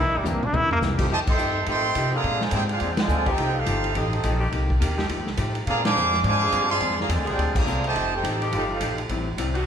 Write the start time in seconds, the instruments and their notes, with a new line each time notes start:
Already playing: hollow-body jazz guitar C3 E3 A#3
0.00 hollow-body jazz guitar D4, trombone E4
0.05 upright bass A#1
0.14 upright bass G1, trombone G3
0.23 upright bass E2, hollow-body jazz guitar C3 E3 A#3 D4, grand piano D3 G3 A#3 C4 E4, hi-hat pedal
0.28 trombone A#3
0.33 upright bass C2
0.43 upright bass A#1, trombone D4, mid tom
0.52 upright bass D2, hollow-body jazz guitar C3 E3 A#3 D4, trombone E4, mid tom
0.71 trombone A#3, floor tom
0.81 upright bass C2, hollow-body jazz guitar C3 E3 A#3 D4, snare, hi-hat pedal
0.98 grand piano D#3 G3 A3 C4 F4, saxophone section F3 A3 D#4 G4, kick, crash
1.08 upright bass F2, trombone section C3 D#3 A3, hollow-body jazz guitar F3 A3 D#4 G4, trumpet section G4 A5
1.13 trumpet section C5 D#5
1.27 trombone section D#3 A3 C4, trumpet section A4 D#5 G5 C6, muted upright bass stroke, kick, crash
1.37 upright bass G2, hollow-body jazz guitar F3 A3 D#4 G4, hi-hat pedal
1.66 upright bass A2, trombone section D#3 A3 C4, hollow-body jazz guitar F3 A3 D#4 G4, trumpet section A4 D#5 G5 C6, kick, ride
1.95 upright bass C3, hollow-body jazz guitar F3 A3 D#4 G4, kick, hi-hat pedal, ride
2.13 trombone section D3 F3 A#3, saxophone section D3 A#3 C4 G#4, trumpet section G#4 D5 F5 A#5
2.22 hollow-body jazz guitar A#2 G#3 C4 D4, upright bass A#2, kick, ride
2.41 trombone section D3 F3 G#3, trumpet section F4 C5 D5 G#5, snare
2.51 upright bass G#2, hollow-body jazz guitar A#2 G#3 C4 D4, trumpet section E4 G#4 C5, trombone section G4, kick, hi-hat pedal, ride
2.55 trumpet section G5
2.69 trombone section G#3 D4 F4, trumpet section D4 G#4 C5 F5, ride
2.80 upright bass E2, hollow-body jazz guitar A#2 G#3 C4, kick, ride
2.85 hollow-body jazz guitar D4
2.93 trumpet section G5
2.97 trombone section D3 F3 G#3, snare, ride
3.02 trumpet section F4 C5 D5 G#5
3.08 upright bass D2, hollow-body jazz guitar A#2 G#3 C4 D4, hi-hat pedal
3.25 saxophone section F3 A3 D#4 G4, trombone section C4 D#4 G4, kick, ride
3.30 trumpet section D#4 A4 C5 G5
3.37 upright bass C2, hollow-body jazz guitar F3 A3 D#4, kick, ride
3.42 hollow-body jazz guitar G4
3.53 trombone section A3 C4 F4
3.59 trumpet section D#4 A4 C5 F5
3.66 upright bass G1, hollow-body jazz guitar F3 A3 D#4 G4, kick, hi-hat pedal, ride
3.84 ride
3.93 upright bass A1, hollow-body jazz guitar F3 A3 D#4 G4, trombone section A3 C4 D#4, kick, ride
3.97 trumpet section C4 G4 A4 D#5
4.10 trombone section A3 C4 D#4, ride
4.14 trumpet section C4 G4 A4 D#5
4.24 upright bass A#1, hollow-body jazz guitar F3 A3 D#4 G4, kick, hi-hat pedal, ride
4.40 saxophone section D#3 A#3 C4 G4
4.51 upright bass C2, hollow-body jazz guitar C3 A#3 D#4 G4, kick, ride
4.70 kick
4.80 upright bass D#2, hollow-body jazz guitar C3 A#3 D#4 G4, kick, hi-hat pedal, ride
4.97 saxophone section F3 A3 D#4 G4, snare
5.09 upright bass F2, hollow-body jazz guitar F3 A3 D#4 G4, kick, ride
5.19 upright bass D#2
5.27 upright bass C2, snare
5.37 upright bass A2, hollow-body jazz guitar F3 A3 D#4 G4, kick, hi-hat pedal, ride
5.55 ride
5.66 hollow-body jazz guitar A#2 G#3 C4 D4, upright bass A#2, trombone section D3 F3 A#3, trumpet section G#4 D5 F5, kick, ride
5.70 trumpet section A#5
5.83 trombone section F3 G#3 D4, trumpet section C5 F5 G#5 D6, snare, ride
5.95 upright bass F2, hollow-body jazz guitar A#2 G#3 C4 D4, hi-hat pedal
6.13 snare, ride
6.23 upright bass G#2, hollow-body jazz guitar A#2 G#3 C4 D4, trombone section F3 G#3 D4, kick, ride
6.27 trumpet section C5 F5 G#5 D6
6.41 saxophone section D3 A#3 C4 G#4
6.52 upright bass G2, hollow-body jazz guitar A#2 G#3 C4 D4, kick, hi-hat pedal, ride
6.70 trombone section F3 G#3 C4, trumpet section G#4 D5 F5 C6, ride
6.80 upright bass F2, hollow-body jazz guitar A#2 G#3 C4 D4, kick, ride
6.91 snare
6.97 trombone section D3 F3 A#3, snare
7.01 trumpet section G#4 D5 F5 A#5
7.09 upright bass E2, hollow-body jazz guitar A#2 G#3 C4 D4, trombone section D3 F3 G#3, trumpet section F4 C5 D5, kick, hi-hat pedal, ride
7.13 trumpet section G#5
7.18 upright bass D2
7.25 upright bass A#1, saxophone section D3 A#3 C4 G#4, trombone section G#3 D4 G4, ride
7.29 trumpet section F4 C5 D5 G5
7.36 upright bass D2, hollow-body jazz guitar A#2 G#3 C4 D4, kick, ride
7.55 trombone section D3 F3 A#3, trumpet section G#4 D5 F5 A#5, kick, crash
7.65 upright bass C2, hollow-body jazz guitar A#2 G#3 C4 D4, hi-hat pedal
7.84 trombone section C3 D#3 A3, trumpet section G4 C5 D#5 A5, ride
7.92 upright bass F1, hollow-body jazz guitar F3 A3 D#4 G4, kick, ride
8.13 trombone section C4 D#4 G4, trumpet section D#4 A4 C5 G5
8.22 upright bass A1, hollow-body jazz guitar F3 A3 D#4 G4, kick, hi-hat pedal, ride
8.42 saxophone section F3 A3 D#4 G4, ride
8.51 upright bass G1, hollow-body jazz guitar F3 A3 D#4 G4, trombone section A3 C4 F4, kick, ride
8.57 trumpet section D#4 A4 C5 F5
8.70 trombone section A3 C4 F4, trumpet section D#4 A4 C5 F5
8.80 upright bass A#1, hollow-body jazz guitar F3 A3 D#4 G4, kick, hi-hat pedal, ride
8.98 ride
9.09 upright bass A1, hollow-body jazz guitar A2 G3 C4 E4, kick, ride
9.37 upright bass C2, hollow-body jazz guitar A2 G3 C4 E4, kick, hi-hat pedal, ride
9.53 saxophone section D#3 C4 D4 F#4, ride